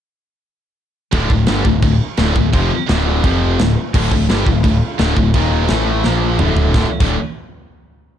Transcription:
1.12 1.29 D1 loud
1.12 1.29 D2 medium
1.12 1.29 A2 medium
1.12 1.31 D3 loud
1.12 kick loud
1.12 china medium
1.30 1.46 D1 medium
1.30 1.44 D2 medium
1.30 1.45 A2 medium
1.30 kick medium
1.46 1.64 G1 medium
1.46 1.65 G2 medium
1.46 1.65 D3 medium
1.46 1.65 G3 medium
1.46 snare loud
1.46 china medium
1.65 1.81 D1 medium
1.65 1.80 D2 medium
1.65 1.80 A2 medium
1.65 kick medium
1.82 1.99 D1 medium
1.82 1.97 D2 medium
1.82 1.97 A2 medium
1.82 kick loud
1.82 china medium
2.17 2.35 D1 medium
2.17 2.35 D2 medium
2.17 2.35 A2 loud
2.17 2.36 D3 loud
2.17 snare loud
2.17 china medium
2.36 2.52 D1 medium
2.36 2.50 D2 medium
2.36 2.51 A2 medium
2.36 kick medium
2.53 2.70 F1 loud
2.53 2.70 F2 medium
2.53 2.71 C3 medium
2.53 2.70 F3 loud
2.53 kick loud
2.53 china medium
2.89 3.22 D1 medium
2.89 3.23 D2 medium
2.89 3.23 A2 loud
2.89 3.24 D3 medium
2.89 snare loud
2.89 china medium
3.24 3.56 F1 loud
3.24 3.59 F2 medium
3.24 3.59 C3 loud
3.24 3.59 F3 loud
3.24 kick loud
3.24 china medium
3.59 3.76 D1 medium
3.59 3.73 D2 medium
3.59 3.73 A2 medium
3.59 snare loud
3.59 china medium
3.94 4.10 D1 loud
3.94 4.12 D2 loud
3.94 4.11 A2 medium
3.94 5.34 D3 medium
3.94 4.12 D3 loud
3.94 5.34 A3 medium
3.94 5.34 E4 medium
3.94 5.69 F4 medium
3.94 kick loud
3.94 crash loud
3.94 china medium
4.12 4.28 D1 medium
4.12 4.27 D2 medium
4.12 4.26 A2 medium
4.12 kick loud
4.29 4.45 G1 medium
4.29 4.46 G2 medium
4.29 4.46 D3 medium
4.29 4.46 G3 loud
4.29 snare loud
4.29 china medium
4.46 4.63 D1 medium
4.46 4.61 D2 medium
4.46 4.61 A2 medium
4.46 kick medium
4.63 4.80 D1 medium
4.63 4.78 D2 medium
4.63 4.78 A2 medium
4.63 kick medium
4.63 china medium
4.99 5.16 D1 medium
4.99 5.16 D2 loud
4.99 5.16 A2 loud
4.99 5.17 D3 loud
4.99 snare loud
4.99 china medium
5.17 5.33 D1 medium
5.17 5.31 D2 medium
5.17 5.32 A2 medium
5.17 kick medium
5.34 5.67 D#1 loud
5.34 5.70 D#2 medium
5.34 5.70 A#2 medium
5.34 5.70 D#3 medium
5.34 5.70 D#3 loud
5.34 5.69 A#3 medium
5.34 5.69 D#5 medium
5.34 kick loud
5.34 china medium
5.68 6.03 A1 medium
5.68 6.04 A2 medium
5.68 6.04 E3 medium
5.68 6.04 A3 loud
5.68 6.05 A3 medium
5.68 6.04 E4 medium
5.68 6.05 A4 medium
5.68 6.04 A5 medium
5.68 snare loud
5.68 china medium
6.04 6.38 A#1 loud
6.04 6.40 A#2 loud
6.04 6.40 F3 loud
6.04 6.39 A#3 medium
6.04 6.40 A#3 loud
6.04 6.39 F4 medium
6.04 6.39 C5 medium
6.04 6.39 A#5 medium
6.04 snare medium
6.39 6.72 D1 loud
6.39 6.74 D2 medium
6.39 6.74 A2 loud
6.39 6.74 D3 medium
6.39 6.74 D4 medium
6.39 6.74 A4 medium
6.39 6.74 E5 medium
6.39 6.74 F5 medium
6.39 mid tom loud
6.57 floor tom loud
6.74 6.84 D1 loud
6.74 6.85 D2 medium
6.74 6.85 A2 loud
6.74 6.86 D3 loud
6.74 6.91 D4 medium
6.74 6.91 A4 medium
6.74 6.91 E5 medium
6.74 6.91 F5 medium
6.74 kick loud
6.74 snare medium
7.00 7.16 D1 medium
7.00 7.14 D2 medium
7.00 7.15 A2 loud
7.00 7.15 D3 loud
7.00 kick loud
7.00 crash loud

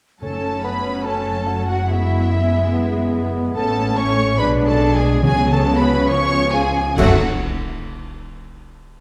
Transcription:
0.22 3.52 F#1 soft
0.22 0.81 F#2 medium
0.22 3.52 F#2 soft
0.22 1.85 F#3 soft
0.22 1.85 A3 soft
0.22 1.85 C#4 soft
0.22 0.62 C#4 soft
0.22 0.62 A4 soft
0.22 0.62 A5 medium
0.22 0.66 A5 soft
0.64 1.05 B3 soft
0.64 1.07 B4 soft
0.64 1.05 B4 soft
0.64 1.07 B5 soft
0.64 1.06 B5 medium
1.04 1.49 C#4 soft
1.04 1.67 A4 medium
1.04 1.69 A4 medium
1.04 1.67 A5 medium
1.04 1.70 A5 soft
1.47 2.33 F#4 medium
1.68 1.89 F#4 soft
1.68 1.79 F#4 soft
1.68 1.89 F#5 medium
1.68 1.89 F#5 soft
1.89 3.52 G#3 soft
1.89 3.52 B3 soft
1.89 3.32 E4 medium
1.89 3.32 E4 soft
1.89 3.34 E5 medium
1.89 3.32 E5 medium
2.31 2.73 E4 medium
2.73 3.95 B3 medium
3.55 4.38 A1 medium
3.55 4.38 A2 medium
3.55 4.39 A3 medium
3.55 4.36 A3 medium
3.55 4.38 C#4 medium
3.55 4.36 C#4 medium
3.55 3.94 A4 medium
3.55 3.95 A4 medium
3.55 3.94 A5 medium
3.55 3.98 A5 medium
3.97 4.38 C#4 medium
3.97 4.40 C#5 medium
3.97 4.39 C#5 medium
3.97 4.41 C#6 medium
3.97 4.39 C#6 medium
4.38 5.24 B1 medium
4.38 5.24 B2 medium
4.38 5.24 G#3 medium
4.38 5.20 G#3 medium
4.38 5.20 D4 medium
4.38 5.22 D4 medium
4.38 5.24 D4 medium
4.38 4.69 B4 medium
4.38 4.48 B4 medium
4.38 4.47 B5 medium
4.38 4.67 B5 medium
4.66 4.95 A4 medium
4.66 4.96 A4 medium
4.66 4.94 A5 medium
4.94 5.23 G#4 medium
4.94 5.22 G#4 medium
4.94 5.01 G#5 medium
4.94 5.23 G#5 medium
5.23 6.75 C#2 medium
5.23 5.84 C#3 medium
5.23 6.74 C#3 medium
5.23 6.08 F#3 medium
5.23 6.06 F#3 medium
5.23 6.73 B3 medium
5.23 6.51 C#4 medium
5.23 5.36 G#4 medium
5.23 5.52 G#4 medium
5.23 5.54 G#5 medium
5.23 5.52 G#5 medium
5.51 5.81 A4 medium
5.51 5.65 A4 medium
5.51 5.80 A5 medium
5.51 5.82 A5 medium
5.79 6.09 B4 medium
5.79 6.11 B4 medium
5.79 6.11 B5 medium
5.79 6.09 B5 medium
6.09 6.74 F3 medium
6.09 6.77 F3 medium
6.09 6.56 C#5 medium
6.09 6.54 C#5 medium
6.09 6.52 C#6 medium
6.09 6.53 C#6 loud
6.52 6.76 F4 medium
6.52 6.98 G#4 medium
6.52 6.98 G#5 medium
6.52 6.97 G#5 medium
6.97 7.22 F#1 medium
6.97 7.23 F#2 medium
6.97 7.19 F#2 medium
6.97 7.23 F#3 medium
6.97 7.17 A3 medium
6.97 7.23 A3 medium
6.97 7.17 C#4 medium
6.97 7.16 F#4 medium
6.97 7.23 F#4 medium
6.97 7.22 A4 medium
6.97 7.22 F#5 medium
6.97 concert bass drum medium
6.97 crash medium

